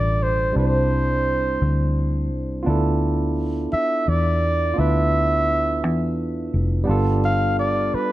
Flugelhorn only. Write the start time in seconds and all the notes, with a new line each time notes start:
Already playing: D5
0.23 C5
0.58 C5
3.73 E5
4.08 D5
4.79 E5
7.25 F5
7.59 D5
7.94 B4